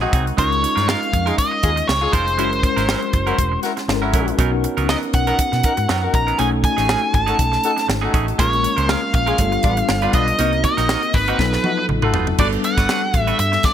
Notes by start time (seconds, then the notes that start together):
Already playing: G#3 C4 D#4 F#4 A#4
0.01 F#3 C4 D#4 F#4 G#4
0.13 C2 F#3 C4 D#4 G#4, kick, closed hi-hat
0.26 muted clean electric guitar stroke, closed hi-hat
0.37 C#2 G#3 C#4 D#4 F4 A#4 C#5, kick, closed hi-hat
0.51 muted clean electric guitar stroke, closed hi-hat
0.62 muted clean electric guitar stroke, closed hi-hat
0.76 G2 G#3 D#4 F4 A#4, snare, closed hi-hat
0.87 G#3 D#4 F4 A#4 F5, snare
1.01 muted clean electric guitar stroke, closed hi-hat
1.12 F2, muted clean electric guitar stroke, kick, closed hi-hat
1.26 G#3 D#4 F4 G#4 A#4, closed hi-hat
1.38 D#5, kick, closed hi-hat
1.51 muted clean electric guitar stroke
1.63 D#2 D#4 F4 G#4, kick, closed hi-hat
1.76 muted clean electric guitar stroke, closed hi-hat
1.88 C#2 C#5, muted clean electric guitar stroke, snare
2.01 D#4 F4 G#4, muted clean electric guitar stroke
2.13 F1 G#3 D#4 F4 A#4 C5, kick, closed hi-hat
2.27 muted clean electric guitar stroke, closed hi-hat
2.38 F#1 F#3 G#3 C#4 E4 F#4 A#4, closed hi-hat
2.51 muted clean electric guitar stroke, closed hi-hat
2.63 muted clean electric guitar stroke, kick, closed hi-hat
2.76 G#1 F#3 C#4 E4 A#4, snare, closed hi-hat
2.88 F#3 C#4 E4 A#4, snare
3.02 muted clean electric guitar stroke, closed hi-hat
3.13 F#1, muted clean electric guitar stroke, kick, closed hi-hat
3.27 F#3 C#4 E4 F#4 A#4, closed hi-hat
3.38 E1, muted clean electric guitar stroke, kick, closed hi-hat
3.52 muted clean electric guitar stroke
3.63 E4 F#4 A#4, snare, closed hi-hat
3.77 muted clean electric guitar stroke, snare, closed hi-hat
3.88 G#1 G#3 C#4 E4 F#4 A4, muted clean electric guitar stroke, snare
3.95 A#4
4.01 F#3 C#4 E4 F#4 A#4
4.13 A#1 F#3 C#4 E4 A#4, kick, closed hi-hat
4.27 muted clean electric guitar stroke, closed hi-hat
4.38 B1 F#3 B3 C#4 D#4 F#4 A#4, kick, closed hi-hat
4.52 muted clean electric guitar stroke
4.64 muted clean electric guitar stroke, closed hi-hat
4.77 C#2 F#3 B3 D#4 A#4, closed hi-hat
4.89 F#3 B3 D#4 A#4 D#5, snare
5.02 muted clean electric guitar stroke, closed hi-hat
5.13 B1 F#5, muted clean electric guitar stroke, kick, closed hi-hat
5.27 F#3 B3 D#4 F#4 A#4, closed hi-hat
5.39 muted fingered electric bass stroke, muted clean electric guitar stroke, kick, closed hi-hat
5.52 B2, muted clean electric guitar stroke, snare, closed hi-hat
5.63 D#4 F#4 A#4, kick, closed hi-hat
5.77 G#2, muted clean electric guitar stroke, closed hi-hat
5.89 F#2 F#3 B3 D#4 A#4, snare
6.02 D#4 F#4 A#4, muted clean electric guitar stroke
6.14 A#1 A#5, muted clean electric guitar stroke, kick, closed hi-hat
6.27 F#3 B3 D#4 A#4, closed hi-hat
6.38 B1 A3 C#4 D#4 F#4 G#4 A4 G#5, closed hi-hat
6.53 muted clean electric guitar stroke
6.64 G#5, muted clean electric guitar stroke, kick, closed hi-hat
6.77 A1 A3 C#4 D#4 G#4, snare, closed hi-hat
6.88 A3 C#4 D#4 G#4, snare
7.02 muted clean electric guitar stroke
7.13 G#1 A5, muted clean electric guitar stroke, kick, closed hi-hat
7.26 A3 C#4 D#4 F#4 G#4 A4, closed hi-hat
7.38 B1, muted clean electric guitar stroke, kick, closed hi-hat
7.52 muted clean electric guitar stroke, snare, closed hi-hat
7.64 D#4 F#4 A4, closed hi-hat
7.77 muted clean electric guitar stroke, snare, closed hi-hat
7.88 G#1, muted clean electric guitar stroke, snare
8.01 A3 C#4 D#4 F#4 G#4 A4
8.13 A1 A3 C#4 D#4 G#4, kick, closed hi-hat
8.27 muted clean electric guitar stroke, closed hi-hat
8.38 A#1 G#3 A#3 C#4 F4 A#4 C#5, kick, closed hi-hat
8.52 muted clean electric guitar stroke, closed hi-hat
8.63 muted clean electric guitar stroke, closed hi-hat
8.76 C#2 G#3 C#4 F4 A#4 C5, closed hi-hat
8.88 G#3 C#4 F4 A#4 F5, snare
9.02 muted clean electric guitar stroke
9.13 A#1 F5, muted clean electric guitar stroke, kick, closed hi-hat
9.26 G#3 C#4 F4 G#4 A#4, closed hi-hat
9.38 G1 G3 A3 D4 F4 A4, muted clean electric guitar stroke, kick, closed hi-hat
9.45 B3
9.52 muted clean electric guitar stroke, closed hi-hat
9.63 A1 B3 D4 F4, kick, closed hi-hat
9.77 muted clean electric guitar stroke, closed hi-hat
9.89 G1, muted clean electric guitar stroke, snare
10.02 G3 B3 D4 F4 B4, closed hi-hat
10.13 B1 G3 D4 F4 B4 D#5, kick, closed hi-hat
10.28 muted clean electric guitar stroke, closed hi-hat
10.38 C2 A#3 C4 D#4 F#4 A#4, closed hi-hat
10.53 muted clean electric guitar stroke, closed hi-hat
10.64 D#5, muted clean electric guitar stroke, kick, closed hi-hat
10.77 A#1 A#3 D#4 F#4 A#4, snare, closed hi-hat
10.89 A#3 D#4 F#4 A#4, snare
11.03 muted clean electric guitar stroke, closed hi-hat
11.14 G#1 B4, muted clean electric guitar stroke, kick, open hi-hat
11.28 A#3 C4 D#4 F#4 A#4, closed hi-hat
11.38 B1 F#3 B3 D#4 F4 A4, muted clean electric guitar stroke, kick, snare
11.53 muted clean electric guitar stroke, snare
11.64 A3 D#4 F#4, high tom
11.78 muted clean electric guitar stroke
11.89 A1, muted clean electric guitar stroke, mid tom
12.02 A3 D#4 F4 F#4 A4 B4, mid tom
12.14 F#1 A3 D#4 F4 B4, floor tom
12.27 muted clean electric guitar stroke, floor tom
12.38 G1 G3 A3 B3 D4 F#4 A4 B4 D5, kick, crash
12.53 muted clean electric guitar stroke, closed hi-hat
12.64 F#5, muted clean electric guitar stroke, closed hi-hat
12.77 G1 A3 D4 F#4 B4, kick, snare, closed hi-hat
12.89 A3 D4 F#4 B4, snare, clap
13.03 muted clean electric guitar stroke
13.14 A1, muted clean electric guitar stroke, kick, closed hi-hat
13.21 E5
13.27 A3 D4 F#4 B4, closed hi-hat
13.39 G2 E5, muted clean electric guitar stroke, closed hi-hat
13.52 muted clean electric guitar stroke, snare, closed hi-hat
13.63 D5, kick, snare, closed hi-hat